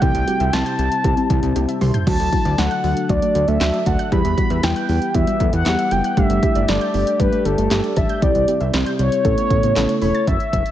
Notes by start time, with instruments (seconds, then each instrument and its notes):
Already playing: analog synth pad G4
0.02 analog synth bass C2, analog synth pad C3 C4 E4, synth pluck E3, synth keys G3 C4 E4 G4, soft synth lead G5, kick, closed hi-hat
0.15 analog synth bass C2, closed hi-hat
0.28 synth keys G3 C4 E4 F#4, synth pluck G4, closed hi-hat
0.40 analog synth bass C2, synth pluck E5, closed hi-hat
0.53 analog synth bass C2, synth keys G3 C4 G4, soft synth lead A5, synth pluck C6, snare, closed hi-hat
0.66 synth pluck G6, closed hi-hat
0.79 analog synth bass C2, synth keys G3 C4 E4 G4, closed hi-hat
0.92 closed hi-hat
1.04 analog synth bass C2, synth keys G3 C4 E4 G4, synth pluck G4, kick, closed hi-hat
1.17 synth pluck C4, closed hi-hat
1.30 analog synth bass C2, synth pluck E3, synth keys G3 C4 E4 G4, kick, closed hi-hat
1.43 analog synth bass C2, synth pluck C4, closed hi-hat
1.56 analog synth bass C2, synth keys G3 C4 E4 G4, synth pluck G4, closed hi-hat, high tom
1.68 synth pluck E5, closed hi-hat
1.81 analog synth bass C2, synth keys G3 C4 E4 G4, synth pluck C6, mid tom, open hi-hat
1.94 synth pluck G6, closed hi-hat, floor tom
2.07 analog synth bass D2, synth pluck D3, analog synth pad D3 D4 A4, synth keys F#3 A3 D4 F#4, soft synth lead A5, kick, crash
2.20 analog synth bass D2, closed hi-hat
2.33 synth keys F#3 A3 D4 E4, synth pluck F#4, kick, closed hi-hat
2.45 analog synth bass D2, synth pluck D5, closed hi-hat
2.58 analog synth bass D2, synth keys F#3 A3 D4 F#4, soft synth lead F#5, synth pluck A5, snare, closed hi-hat
2.71 synth pluck F#6, closed hi-hat
2.84 analog synth bass D2, synth keys F#3 A3 D4 F#4, open hi-hat
2.97 closed hi-hat
3.09 analog synth bass D2, synth keys F#3 A3 D4 F#4, synth pluck F#4, soft synth lead D5, kick, closed hi-hat
3.22 synth pluck A3, closed hi-hat
3.35 analog synth bass D2, synth pluck D3, synth keys F#3 A3 D4 F#4, closed hi-hat
3.48 analog synth bass D2, synth pluck A3, soft synth lead E5, closed hi-hat
3.61 analog synth bass D2, synth keys F#3 A3 D4 F#4, synth pluck F#4, snare, clap, closed hi-hat
3.74 synth pluck D5, closed hi-hat
3.86 analog synth bass D2, synth keys F#3 A3 D4 F#4, soft synth lead F#5, synth pluck A5, kick, closed hi-hat
3.99 synth pluck F#6, closed hi-hat
4.12 analog synth bass E2, synth pluck E3, analog synth pad E3 B3 G4, synth keys G3 B3 E4 G4, soft synth lead B5, kick, closed hi-hat
4.25 analog synth bass E2, closed hi-hat
4.38 synth keys G3 B3 E4 G4, synth pluck F#4, kick, closed hi-hat
4.50 analog synth bass E2, synth pluck E5, closed hi-hat
4.63 analog synth bass E2, synth keys G3 B3 E4 G4, synth pluck G5, soft synth lead G5, snare, closed hi-hat
4.76 synth pluck F#6, closed hi-hat
4.89 analog synth bass E2, synth keys G3 B3 E4 G4, open hi-hat
5.02 closed hi-hat
5.14 analog synth bass E2, synth keys G3 B3 E4 G4, synth pluck F#4, soft synth lead E5, kick, closed hi-hat
5.27 synth pluck G3, closed hi-hat
5.40 analog synth bass E2, synth pluck E3, synth keys G3 B3 E4 A4, kick, closed hi-hat
5.53 analog synth bass E2, synth pluck G3, soft synth lead F#5, closed hi-hat
5.66 analog synth bass E2, synth keys G3 B3 E4 G4, synth pluck F#4, snare, clap, closed hi-hat
5.79 synth pluck E5, closed hi-hat
5.91 analog synth bass F#1, synth keys G3 B3 E4 G4, soft synth lead G5, synth pluck G5, closed hi-hat
6.04 synth pluck F#6, closed hi-hat
6.17 analog synth bass G1, synth pluck D3, synth keys G3 A3 D4 G4, analog synth pad A3 D4 G4, soft synth lead E5, kick, closed hi-hat
6.30 analog synth bass G1, closed hi-hat
6.43 synth keys G3 A3 D4 E4, synth pluck G4, kick, closed hi-hat
6.55 analog synth bass G1, synth pluck D5, closed hi-hat
6.68 analog synth bass G1, synth keys G3 A3 D4 G4, soft synth lead D5, synth pluck A5, snare, closed hi-hat
6.81 synth pluck G6, closed hi-hat
6.94 analog synth bass G1, synth keys G3 A3 D4 G4, open hi-hat
7.07 closed hi-hat
7.20 analog synth bass G1, synth keys G3 A3 D4 G4, synth pluck G4, soft synth lead B4, kick, closed hi-hat
7.33 synth pluck A3, closed hi-hat
7.45 analog synth bass G1, synth pluck D3, synth keys G3 A3 D4 G4, soft synth lead A4, closed hi-hat
7.58 analog synth bass G1, synth pluck A3, closed hi-hat
7.71 analog synth bass G1, synth keys G3 A3 D4 G4, synth pluck G4, snare, clap, closed hi-hat
7.84 synth pluck D5, closed hi-hat
7.96 analog synth bass A1, synth keys G3 A3 D4 G4, soft synth lead E5, synth pluck A5, kick, closed hi-hat
8.09 synth pluck G6, closed hi-hat
8.22 analog synth bass C2, analog synth pad C3 C4 E4 G4, synth pluck E3, synth keys G3 C4 E4 G4, soft synth lead D5, kick, closed hi-hat
8.35 analog synth bass C2, closed hi-hat
8.48 synth keys G3 C4 E4 G4, synth pluck G4, closed hi-hat
8.61 analog synth bass C2, synth pluck E5, closed hi-hat
8.74 analog synth bass C2, synth keys G3 C4 E4 G4, synth pluck C6, snare, closed hi-hat
8.86 synth pluck G6, closed hi-hat
8.99 analog synth bass C2, synth keys G3 C4 E4 G4, soft synth lead C#5, closed hi-hat
9.12 closed hi-hat
9.25 analog synth bass A1, analog synth pad C#3 A3 B3, synth keys A3 C#4 E4 A4, synth pluck A4, kick, closed hi-hat
9.38 synth pluck B3, closed hi-hat
9.50 analog synth bass A1, synth pluck C#3, synth keys A3 C#4 E4 A4, kick, closed hi-hat
9.63 analog synth bass A1, synth pluck B3, closed hi-hat
9.76 analog synth bass A1, synth keys A3 C#4 E4 A4, synth pluck A4, snare, clap, closed hi-hat
9.89 synth pluck C#5, closed hi-hat
10.02 analog synth bass E1, synth keys A3 C#4 E4 A4, soft synth lead C#5, synth pluck B5, open hi-hat
10.15 synth pluck A6, closed hi-hat
10.27 analog synth bass F#1, analog synth pad F#3 C#4 E4 A4, soft synth lead E5, kick, closed hi-hat
10.40 closed hi-hat
10.53 analog synth bass F#1, kick, closed hi-hat
10.66 closed hi-hat